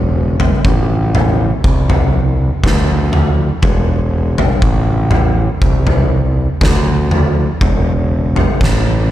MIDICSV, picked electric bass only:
0, 0, Header, 1, 2, 480
1, 0, Start_track
1, 0, Tempo, 995025
1, 1752, Time_signature, 4, 2, 24, 8
1, 4396, End_track
2, 0, Start_track
2, 0, Title_t, "Picked electric bass"
2, 0, Program_c, 0, 34
2, 0, Note_on_c, 0, 28, 93
2, 245, Note_off_c, 0, 28, 0
2, 314, Note_on_c, 0, 33, 98
2, 725, Note_off_c, 0, 33, 0
2, 793, Note_on_c, 0, 36, 83
2, 1204, Note_off_c, 0, 36, 0
2, 1272, Note_on_c, 0, 38, 86
2, 1683, Note_off_c, 0, 38, 0
2, 1752, Note_on_c, 0, 28, 91
2, 2163, Note_off_c, 0, 28, 0
2, 2229, Note_on_c, 0, 33, 94
2, 2642, Note_off_c, 0, 33, 0
2, 2709, Note_on_c, 0, 36, 83
2, 3122, Note_off_c, 0, 36, 0
2, 3191, Note_on_c, 0, 38, 82
2, 3604, Note_off_c, 0, 38, 0
2, 3671, Note_on_c, 0, 28, 98
2, 4084, Note_off_c, 0, 28, 0
2, 4152, Note_on_c, 0, 33, 86
2, 4396, Note_off_c, 0, 33, 0
2, 4396, End_track
0, 0, End_of_file